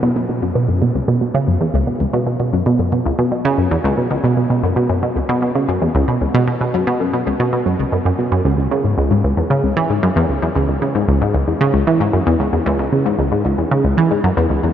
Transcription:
0.03 0.15 B2 loud
0.16 0.25 B2 medium
0.29 0.42 B2 medium
0.42 0.52 F#2 medium
0.55 0.68 B2 loud
0.69 0.81 F#2 medium
0.82 0.91 B2 medium
0.95 1.01 C#2 medium
1.08 1.20 B2 loud
1.21 1.31 B2 medium
1.34 1.47 C#3 loud
1.48 1.57 F#2 medium
1.61 1.66 E2 loud
1.74 1.83 C#2 loud
1.87 1.97 B2 medium
2.00 2.06 C#2 medium
2.13 2.25 B2 loud
2.27 2.36 B2 medium
2.40 2.52 B2 medium
2.53 2.62 F#2 medium
2.66 2.79 B2 loud
2.79 2.92 F#2 medium
2.92 3.02 B2 medium
3.06 3.11 C#2 medium
3.19 3.31 B2 loud
3.32 3.41 B2 medium
3.45 3.58 C#3 loud
3.58 3.68 F#2 medium
3.71 3.77 E2 loud
3.84 3.94 C#2 loud
3.98 4.07 B2 medium
4.11 4.16 C#2 medium
4.24 4.36 B2 loud
4.37 4.46 B2 medium
4.50 4.63 B2 medium
4.63 4.73 F#2 medium
4.76 4.89 B2 loud
4.89 5.02 F#2 medium
5.03 5.12 B2 medium
5.16 5.22 C#2 medium
5.29 5.41 B2 loud
5.42 5.52 B2 medium
5.55 5.68 C#3 loud
5.68 5.78 F#2 medium
5.82 5.87 E2 loud
5.95 6.04 C#2 loud
6.08 6.18 B2 medium
6.21 6.27 C#2 medium
6.34 6.46 B2 loud
6.48 6.57 B2 medium
6.61 6.73 B2 medium
6.74 6.83 F#2 medium
6.87 7.00 B2 loud
7.00 7.13 F#2 medium
7.13 7.23 B2 medium
7.27 7.32 C#2 medium
7.40 7.52 B2 loud
7.53 7.62 B2 medium
7.66 7.75 F#2 medium
7.79 7.85 C#2 medium
7.92 7.98 F#2 medium
8.05 8.11 F#2 loud
8.19 8.31 B2 medium
8.32 8.41 F#2 loud
8.45 8.57 C#2 loud
8.58 8.68 C#2 medium
8.71 8.84 C#3 medium
8.84 8.94 G#2 medium
8.98 9.10 C#2 loud
9.11 9.23 G#2 medium
9.24 9.33 C#2 medium
9.37 9.43 E2 medium
9.50 9.63 C#3 loud
9.63 9.73 C#2 medium
9.77 9.89 E3 loud
9.90 9.99 G#2 medium
10.03 10.09 F#2 loud
10.16 10.26 E2 loud
10.29 10.39 C#2 medium
10.42 10.48 E2 medium
10.55 10.68 C#2 loud
10.69 10.78 C#2 medium
10.82 10.94 C#3 medium
10.95 11.04 G#2 medium
11.08 11.21 C#2 loud
11.21 11.34 G#2 medium
11.34 11.44 C#2 medium
11.48 11.53 E2 medium
11.61 11.73 C#3 loud
11.74 11.83 C#2 medium
11.87 12.00 E3 loud
12.00 12.10 G#2 medium
12.13 12.19 F#2 loud
12.27 12.36 E2 loud
12.40 12.49 C#2 medium
12.53 12.59 E2 medium
12.66 12.78 C#2 loud
12.79 12.89 C#2 medium
12.92 13.05 C#3 medium
13.06 13.15 G#2 medium
13.19 13.31 C#2 loud
13.32 13.44 G#2 medium
13.45 13.54 C#2 medium
13.58 13.64 E2 medium
13.71 13.84 C#3 loud
13.84 13.94 C#2 medium
13.98 14.10 E3 loud
14.11 14.20 G#2 medium
14.24 14.30 F#2 loud
14.37 14.47 E2 loud
14.50 14.60 C#2 medium
14.63 14.69 E2 medium

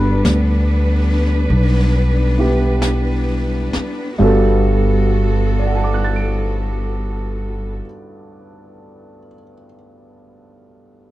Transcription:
0.00 0.21 G1 medium
0.00 4.15 G3 medium
0.00 4.17 G3 medium
0.00 2.35 B3 soft
0.00 4.15 B3 medium
0.00 4.15 D4 medium
0.00 4.19 D4 soft
0.00 4.20 F#4 soft
0.00 4.21 A4 medium
0.00 0.29 B4 medium
0.00 4.15 B4 medium
0.25 1.46 D2 medium
0.25 brush sweep soft
0.25 snare soft
0.25 hi-hat pedal medium
1.50 3.70 B1 medium
1.50 brush sweep soft
2.37 4.18 B3 soft
2.37 4.19 E4 soft
2.37 4.20 G4 medium
2.82 brush sweep soft
2.82 snare soft
2.82 hi-hat pedal medium
3.73 muted upright bass stroke soft
3.73 snare soft
4.18 7.79 G1 medium
4.18 7.82 G2 medium
4.18 7.77 G3 medium
4.18 7.82 G3 medium
4.18 7.78 B3 medium
4.18 7.84 B3 medium
4.18 7.78 F#4 medium
4.18 7.85 F#4 medium
4.18 7.78 A4 medium
4.22 7.85 A4 medium
5.59 9.18 D5 soft
5.66 9.26 F#5 soft
5.75 9.34 A5 soft
5.84 9.43 D6 soft
5.94 9.53 F#6 soft
6.04 9.64 A6 soft
6.16 9.75 D7 soft

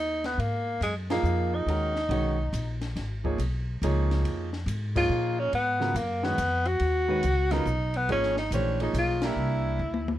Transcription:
0.00 0.34 D#2 medium
0.00 0.27 D#4 loud
0.24 0.42 B3 medium
0.24 snare soft
0.24 ride soft
0.38 0.80 G#2 medium
0.38 0.82 A#3 loud
0.38 ride medium
0.81 1.23 F#2 medium
0.81 0.95 G#3 medium
0.81 hi-hat pedal medium
0.81 ride medium
1.10 1.64 A#2 medium
1.10 1.64 F3 medium
1.10 1.56 A#3 medium
1.10 1.65 D#4 medium
1.10 1.65 G#4 medium
1.10 1.65 A#4 medium
1.10 snare medium
1.10 ride medium
1.23 1.65 F2 medium
1.23 hi-hat pedal medium
1.55 2.82 D#4 medium
1.66 2.08 D#2 medium
1.66 1.93 D#3 medium
1.66 1.93 G#3 medium
1.66 1.93 C#4 soft
1.66 1.94 F#4 soft
1.66 1.94 A#4 medium
1.66 ride medium
1.96 snare soft
2.09 2.51 B1 medium
2.09 2.35 D#3 medium
2.09 2.35 G#3 medium
2.09 2.35 C#4 medium
2.09 2.36 F#4 medium
2.09 2.36 C#5 medium
2.09 ride medium
2.53 2.94 A#1 medium
2.53 hi-hat pedal medium
2.53 ride medium
2.81 snare soft
2.81 ride soft
2.96 3.37 G#1 medium
2.96 snare soft
2.96 ride medium
3.24 3.37 F3 medium
3.24 3.38 A#3 medium
3.24 3.37 D#4 medium
3.24 3.38 G#4 medium
3.24 3.38 C#5 medium
3.24 kick medium
3.38 3.80 B1 medium
3.38 hi-hat pedal soft
3.38 ride medium
3.82 4.23 C#2 medium
3.82 4.47 F3 medium
3.82 4.47 A#3 medium
3.82 4.48 D#4 medium
3.82 4.48 G#4 medium
3.82 4.48 C#5 medium
3.82 hi-hat pedal medium
3.82 ride medium
4.11 snare soft
4.11 ride soft
4.23 4.65 F2 medium
4.23 ride medium
4.53 snare soft
4.66 5.08 G#2 medium
4.66 hi-hat pedal medium
4.66 ride medium
4.95 5.50 F3 medium
4.95 5.50 A#3 medium
4.95 5.50 D#4 medium
4.95 5.41 F4 medium
4.95 5.50 G#4 medium
4.95 5.50 C#5 medium
4.95 kick medium
4.95 crash medium
5.09 5.51 A#2 medium
5.39 5.53 C#4 medium
5.53 5.94 G#2 medium
5.53 5.98 B3 loud
5.53 ride medium
5.80 5.93 C#3 medium
5.80 5.94 F#3 medium
5.80 5.94 B3 medium
5.80 5.94 F4 medium
5.80 5.94 A#4 medium
5.80 snare soft
5.95 6.36 F#2 medium
5.95 6.26 A#3 medium
5.95 hi-hat pedal medium
5.95 ride medium
6.23 6.37 D#3 medium
6.23 6.37 G#3 medium
6.23 6.68 B3 medium
6.23 6.37 C#4 medium
6.23 6.37 F#4 medium
6.23 6.37 C#5 medium
6.23 snare soft
6.38 6.79 F2 medium
6.38 hi-hat pedal medium
6.38 ride medium
6.65 7.53 F#4 loud
6.65 ride soft
6.80 7.22 D#2 medium
6.80 ride medium
7.08 7.22 D#3 medium
7.08 7.22 G#3 medium
7.08 7.22 C#4 medium
7.08 7.23 F#4 medium
7.08 7.23 B4 medium
7.23 7.65 C#2 medium
7.23 hi-hat pedal medium
7.23 ride medium
7.51 7.65 C#3 medium
7.51 7.65 F#3 medium
7.51 7.65 B3 medium
7.51 7.98 D#4 medium
7.51 7.66 F4 medium
7.51 7.66 A#4 medium
7.51 snare soft
7.51 ride medium
7.66 8.07 B1 loud
7.66 hi-hat pedal medium
7.94 8.10 B3 medium
7.94 ride soft
8.09 8.50 G#1 medium
8.09 8.34 F3 medium
8.09 8.34 A#3 medium
8.09 8.37 C#4 loud
8.09 8.35 D#4 medium
8.09 8.35 G#4 medium
8.09 8.35 C#5 medium
8.09 ride medium
8.23 snare soft
8.37 8.51 D#4 medium
8.37 snare soft
8.51 8.93 A#1 medium
8.51 8.77 E3 medium
8.51 8.78 A3 medium
8.51 8.79 C#4 medium
8.51 8.78 D4 medium
8.51 8.78 G4 medium
8.51 8.78 C5 medium
8.51 hi-hat pedal medium
8.51 ride medium
8.80 9.17 F3 medium
8.80 9.17 A#3 medium
8.80 9.18 D#4 medium
8.80 8.95 D#4 medium
8.80 9.18 G#4 medium
8.80 9.18 C#5 medium
8.80 ride soft
8.93 9.35 B1 medium
8.93 hi-hat pedal medium
8.93 ride medium
8.98 9.28 F4 medium
9.22 9.77 A#3 medium
9.22 9.78 D4 medium
9.22 9.78 E4 medium
9.22 9.78 G4 medium
9.22 9.78 A#4 medium
9.22 snare medium
9.22 ride medium
9.26 10.19 E4 medium
9.36 9.78 C2 medium
9.79 10.19 D2 medium
9.94 high tom medium
10.08 high tom medium

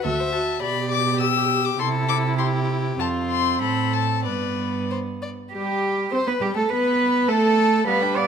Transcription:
0.04 0.53 D2 medium
0.04 0.33 F#4 soft
0.04 0.21 A4 medium
0.04 0.61 E5 medium
0.20 0.35 C5 medium
0.33 0.62 F#4 medium
0.33 0.61 A5 medium
0.62 1.75 B2 medium
0.62 1.75 G4 medium
0.62 1.22 D5 medium
0.62 0.90 B5 medium
0.91 1.20 D6 medium
1.20 1.81 G4 medium
1.20 1.67 E6 medium
1.65 1.80 D6 medium
1.79 2.97 C3 medium
1.79 2.96 E4 medium
1.79 2.39 A4 medium
1.79 1.88 C6 medium
2.09 2.17 D6 medium
2.39 3.01 G4 medium
2.39 2.47 C6 medium
2.99 3.63 F2 soft
2.99 4.27 C4 medium
2.99 3.61 F4 medium
2.99 3.08 A5 medium
3.30 3.61 C6 medium
3.61 4.27 A2 soft
3.61 4.24 A4 soft
3.61 3.95 B5 medium
3.93 4.25 A5 medium
4.25 5.33 G2 soft
4.25 5.33 B3 soft
4.25 4.83 B4 soft
4.25 4.89 D5 medium
4.91 4.99 C5 soft
5.22 5.30 D5 soft
5.53 6.08 G3 medium
5.53 6.08 G4 soft
5.53 6.08 G4 medium
5.53 6.14 G4 medium
6.12 6.18 C4 medium
6.12 6.27 C5 medium
6.12 6.26 C5 medium
6.12 6.29 C5 medium
6.27 6.33 B3 medium
6.27 6.43 B4 soft
6.27 6.33 B4 medium
6.27 6.44 B4 medium
6.41 6.55 G3 medium
6.41 6.57 G4 medium
6.41 6.47 G4 medium
6.41 6.56 G4 medium
6.55 6.61 A3 medium
6.55 6.70 A4 medium
6.55 6.72 A4 medium
6.55 6.70 A4 medium
6.70 7.30 B3 medium
6.70 7.30 B4 medium
6.70 7.31 B4 medium
7.28 7.86 A3 medium
7.28 7.86 A4 medium
7.28 7.87 A4 medium
7.87 8.27 G3 medium
7.87 8.04 B3 medium
7.87 8.18 B4 medium
7.87 8.03 F5 medium
8.01 8.19 D4 soft
8.01 8.18 G5 medium
8.17 8.27 B3 soft
8.17 8.27 D5 medium
8.17 8.27 F5 medium

